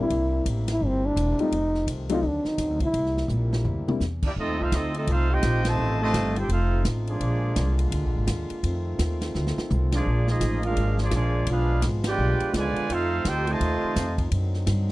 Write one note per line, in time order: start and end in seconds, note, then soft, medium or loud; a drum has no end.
0.00 0.44 G3 medium
0.00 1.50 G3 medium
0.00 0.44 A#3 medium
0.00 1.50 A#3 medium
0.00 0.44 C4 medium
0.00 0.44 D4 medium
0.00 0.44 E4 medium
0.10 0.45 C2 loud
0.10 2.21 C3 medium
0.10 1.51 E4 medium
0.10 kick soft
0.10 ride medium
0.46 0.80 A1 loud
0.46 kick soft
0.46 hi-hat pedal medium
0.46 ride medium
0.68 0.88 E4 medium
0.68 snare medium
0.68 ride medium
0.81 1.16 G1 medium
0.81 kick soft
0.86 1.07 C4 medium
1.06 1.42 D4 loud
1.16 1.37 E1 loud
1.16 kick soft
1.16 hi-hat pedal medium
1.16 ride medium
1.39 1.51 G3 medium
1.39 1.52 A3 medium
1.39 1.52 C4 medium
1.39 1.52 D#4 medium
1.39 1.89 D#4 medium
1.39 1.52 F4 medium
1.39 muted upright bass stroke soft
1.39 ride soft
1.52 1.86 F1 medium
1.52 2.93 D#3 medium
1.52 2.22 F3 medium
1.52 2.23 A3 medium
1.52 kick soft
1.52 ride medium
1.74 snare soft
1.87 2.22 C2 medium
1.87 kick soft
1.87 hi-hat pedal medium
1.87 ride medium
2.09 2.22 F#3 medium
2.09 2.22 A3 medium
2.09 2.22 C4 medium
2.09 2.22 D4 medium
2.09 2.23 D#4 medium
2.09 2.28 F4 loud
2.09 ride medium
2.22 2.43 D2 medium
2.22 2.93 D3 medium
2.22 2.94 F#3 medium
2.22 2.94 C4 medium
2.22 2.48 D4 medium
2.22 kick soft
2.45 2.82 D#4 loud
2.45 muted upright bass stroke soft
2.45 snare soft
2.58 2.70 D#2 loud
2.58 kick soft
2.58 snare soft
2.58 hi-hat pedal medium
2.58 ride medium
2.70 2.81 D2 medium
2.80 2.93 C2 medium
2.80 3.27 E4 loud
2.80 kick medium
2.80 ride soft
2.93 3.28 C2 loud
2.93 4.19 C3 medium
2.93 4.19 G3 medium
2.93 4.19 A#3 medium
2.93 4.19 E4 medium
2.93 kick soft
2.93 ride medium
3.06 snare soft
3.17 snare soft
3.28 3.63 A#1 loud
3.28 hi-hat pedal medium
3.28 mid tom medium
3.53 snare medium
3.65 3.86 D2 medium
3.65 floor tom medium
3.87 4.00 G3 medium
3.87 4.00 A#3 medium
3.87 4.00 C4 medium
3.87 4.00 D4 medium
3.87 4.00 E4 medium
3.87 muted upright bass stroke soft
3.87 mid tom loud
4.00 4.35 E2 loud
4.00 snare medium
4.00 hi-hat pedal medium
4.22 4.30 D4 medium
4.22 4.31 E4 medium
4.22 4.31 G4 medium
4.22 4.31 D5 medium
4.22 kick medium
4.22 crash medium
4.27 4.32 A#3 medium
4.36 4.49 F2 loud
4.36 7.18 A3 medium
4.36 4.58 A3 medium
4.36 7.18 C4 medium
4.36 4.58 C4 medium
4.36 4.59 C4 medium
4.36 7.18 D#4 medium
4.36 4.58 D#4 medium
4.36 12.86 F4 medium
4.36 4.59 F4 medium
4.36 4.59 A4 medium
4.36 4.59 D#5 loud
4.36 kick soft
4.49 4.60 D#2 medium
4.60 4.71 C2 medium
4.60 4.73 A3 medium
4.60 4.73 C4 medium
4.60 4.74 D#4 medium
4.60 4.73 F4 medium
4.60 4.74 A4 medium
4.60 4.73 C5 medium
4.60 4.73 F5 loud
4.72 5.06 D2 loud
4.72 4.95 A3 medium
4.72 4.95 C4 medium
4.72 4.96 C4 medium
4.72 4.95 D#4 medium
4.72 4.95 F4 medium
4.72 4.96 A4 medium
4.72 4.96 D#5 medium
4.72 kick soft
4.72 snare medium
4.72 hi-hat pedal medium
4.72 ride medium
4.94 5.08 A3 medium
4.94 5.08 C4 medium
4.94 5.09 C4 medium
4.94 5.08 D#4 medium
4.94 5.08 F4 medium
4.94 5.08 A4 medium
4.94 5.08 D#5 medium
4.94 ride medium
5.07 5.42 C2 medium
5.07 5.30 A3 medium
5.07 5.31 C4 medium
5.07 5.30 F4 medium
5.07 kick soft
5.07 ride medium
5.12 5.32 D#4 medium
5.12 5.32 A4 medium
5.12 5.31 C5 medium
5.12 5.32 F5 loud
5.32 5.66 C4 loud
5.32 5.66 D#4 loud
5.32 5.67 F4 medium
5.32 5.66 G4 loud
5.32 5.66 C5 loud
5.32 5.66 D#5 medium
5.32 5.66 G5 loud
5.42 5.77 A#1 loud
5.42 kick soft
5.42 snare medium
5.42 hi-hat pedal medium
5.42 ride medium
5.65 6.00 C3 loud
5.65 6.01 D#3 loud
5.65 6.01 A3 loud
5.65 6.02 F4 loud
5.65 6.02 C5 loud
5.65 6.02 D#5 loud
5.65 6.02 A5 loud
5.65 snare medium
5.65 ride medium
5.79 6.13 A1 loud
6.01 6.34 C3 loud
6.01 6.34 D#3 medium
6.01 6.34 A3 loud
6.01 6.35 F4 loud
6.01 6.35 C5 loud
6.01 6.35 D#5 loud
6.01 6.35 A5 loud
6.14 6.48 G1 loud
6.14 kick soft
6.14 snare medium
6.14 hi-hat pedal medium
6.14 ride medium
6.36 6.51 D#4 medium
6.36 6.50 G4 medium
6.36 6.50 A4 medium
6.36 6.51 C5 medium
6.36 6.51 G5 medium
6.36 ride medium
6.49 6.84 F1 loud
6.49 6.84 A3 medium
6.49 6.83 C4 medium
6.49 6.84 D#4 medium
6.49 6.83 F4 medium
6.49 6.84 A4 medium
6.49 6.84 C5 medium
6.49 6.84 F5 medium
6.49 kick soft
6.49 ride medium
6.85 7.19 A1 loud
6.85 kick soft
6.85 snare medium
6.85 hi-hat pedal medium
6.85 ride medium
7.07 7.75 F3 medium
7.07 7.75 G#3 medium
7.07 7.75 A#3 medium
7.07 7.74 D4 medium
7.07 7.76 F4 medium
7.07 7.76 G#4 medium
7.07 7.75 D5 medium
7.07 ride medium
7.20 7.55 A#1 medium
7.20 8.62 D3 medium
7.20 8.62 G#3 medium
7.20 8.62 A#3 medium
7.20 kick soft
7.20 ride medium
7.56 7.91 C2 loud
7.56 kick soft
7.56 snare medium
7.56 hi-hat pedal medium
7.56 ride medium
7.79 ride medium
7.91 8.04 D2 loud
7.91 kick soft
7.91 ride medium
8.04 8.16 A#1 medium
8.16 8.27 G#1 medium
8.27 8.48 D#2 loud
8.27 kick soft
8.27 snare medium
8.27 hi-hat pedal medium
8.27 ride medium
8.50 muted upright bass stroke soft
8.50 ride medium
8.63 8.98 F2 loud
8.63 10.04 D#3 medium
8.63 10.04 A3 medium
8.63 10.04 C4 medium
8.63 kick soft
8.63 ride medium
8.99 9.33 D#2 loud
8.99 kick soft
8.99 snare medium
8.99 hi-hat pedal medium
8.99 ride medium
9.21 snare medium
9.21 ride medium
9.35 9.55 D2 medium
9.35 snare medium
9.47 snare medium
9.57 muted upright bass stroke soft
9.57 snare medium
9.70 10.05 C2 loud
9.70 hi-hat pedal medium
9.70 mid tom medium
9.92 10.26 F3 medium
9.92 10.25 G#3 medium
9.92 10.27 A#3 medium
9.92 10.26 D4 medium
9.92 10.27 F4 medium
9.92 10.27 G#4 medium
9.92 10.27 D5 medium
9.92 snare medium
9.92 ride medium
10.06 10.40 A#1 loud
10.06 12.87 F3 medium
10.06 12.87 G#3 medium
10.06 11.46 A#3 medium
10.27 10.64 F3 medium
10.27 10.63 G#3 medium
10.27 10.65 A#3 medium
10.27 10.63 D#4 medium
10.27 10.65 F4 medium
10.27 10.65 G#4 medium
10.27 10.65 D#5 loud
10.27 snare medium
10.40 10.75 A1 loud
10.40 kick soft
10.40 snare medium
10.40 hi-hat pedal medium
10.40 ride medium
10.63 10.97 G#3 medium
10.63 10.97 D4 medium
10.63 10.98 D4 medium
10.63 10.97 F4 medium
10.63 10.98 G#4 medium
10.63 10.97 A#4 medium
10.63 10.98 F5 medium
10.63 ride medium
10.76 11.11 G#1 loud
10.76 kick soft
10.76 ride medium
10.98 11.11 F3 medium
10.98 11.11 G#3 medium
10.98 11.12 D4 medium
10.98 11.14 F4 medium
10.98 11.14 G#4 medium
10.98 snare medium
11.02 11.14 A#3 medium
11.02 11.14 D5 loud
11.11 11.46 A#1 loud
11.11 11.45 F3 medium
11.11 11.45 G#3 medium
11.11 11.45 D4 medium
11.11 kick soft
11.11 snare medium
11.11 hi-hat pedal medium
11.11 ride medium
11.16 11.47 A#3 medium
11.16 11.47 F4 medium
11.16 11.47 G#4 medium
11.16 11.47 D5 medium
11.46 11.82 B1 loud
11.46 11.84 G#3 medium
11.46 12.87 B3 medium
11.46 11.84 D4 medium
11.46 11.84 F4 medium
11.46 kick soft
11.46 ride medium
11.51 11.85 D4 medium
11.51 11.85 G#4 medium
11.51 11.85 B4 medium
11.51 11.85 F5 loud
11.82 12.17 G#1 medium
11.82 kick soft
11.82 snare medium
11.82 hi-hat pedal medium
11.82 ride medium
12.04 12.51 G#3 loud
12.04 12.52 D4 medium
12.04 12.52 G4 loud
12.04 snare loud
12.04 ride medium
12.08 12.52 F4 medium
12.08 12.52 B4 loud
12.08 12.52 D5 loud
12.08 12.52 G5 loud
12.18 12.39 B1 loud
12.40 muted upright bass stroke soft
12.40 ride medium
12.54 12.74 C#2 loud
12.54 12.90 D3 medium
12.54 12.90 F3 medium
12.54 12.90 G#3 medium
12.54 12.91 B4 loud
12.54 12.91 D5 loud
12.54 12.91 G#5 loud
12.54 kick soft
12.54 snare medium
12.54 hi-hat pedal medium
12.54 ride medium
12.58 12.91 F4 loud
12.76 muted upright bass stroke soft
12.76 ride medium
12.89 13.24 F2 loud
12.89 14.30 A3 medium
12.89 13.26 A3 medium
12.89 14.30 C4 medium
12.89 13.25 C4 medium
12.89 14.30 D#4 medium
12.89 13.27 D#4 loud
12.89 14.30 F4 medium
12.89 13.25 F4 medium
12.89 13.27 C5 loud
12.89 kick soft
12.89 ride medium
12.93 13.27 A4 loud
12.93 13.27 F5 loud
13.25 13.59 D2 loud
13.25 13.49 D#4 medium
13.25 13.48 G4 medium
13.25 13.49 A4 medium
13.25 13.48 C5 loud
13.25 13.49 G5 loud
13.25 kick soft
13.25 snare medium
13.25 hi-hat pedal medium
13.25 ride medium
13.47 14.18 C3 medium
13.47 14.18 D#3 loud
13.47 14.18 A3 loud
13.47 14.20 F4 medium
13.47 14.20 C5 loud
13.47 14.20 D#5 medium
13.47 14.20 A5 loud
13.47 ride medium
13.60 13.81 D#2 medium
13.60 kick soft
13.60 ride medium
13.83 muted upright bass stroke soft
13.96 14.30 F2 loud
13.96 kick soft
13.96 snare medium
13.96 hi-hat pedal medium
13.96 ride medium
14.18 kick medium
14.18 ride medium
14.31 14.66 F#2 medium
14.31 14.92 D3 medium
14.31 14.92 F#3 medium
14.31 14.92 C4 medium
14.31 14.92 D#4 medium
14.31 kick soft
14.31 ride medium
14.54 snare soft
14.67 14.92 G2 loud
14.67 kick soft
14.67 snare medium
14.67 hi-hat pedal medium
14.67 ride medium